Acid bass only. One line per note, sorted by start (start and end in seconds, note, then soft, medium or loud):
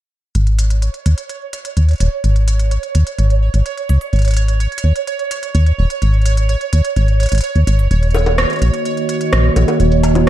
0.35 0.90 G#1 medium
1.06 1.15 D#2 medium
1.77 1.95 D#2 medium
2.00 2.09 D#1 medium
2.24 2.79 G#1 medium
2.95 3.04 D#2 medium
3.19 3.49 G#1 medium
3.54 3.63 G#1 medium
3.89 3.98 C#2 medium
4.13 4.67 G#1 medium
4.84 4.93 D#2 medium
5.55 5.73 D#2 medium
5.78 5.87 D#1 medium
6.02 6.56 G#1 medium
6.73 6.82 D#2 medium
6.96 7.27 G#1 medium
7.32 7.41 G#1 medium
7.55 7.64 D#2 medium
7.67 7.81 G#1 medium
7.79 7.88 F#1 medium
7.91 8.45 D#1 medium
8.62 8.71 A#1 medium
9.33 9.51 A#1 medium
9.56 9.65 A#1 medium
9.80 10.29 D#1 medium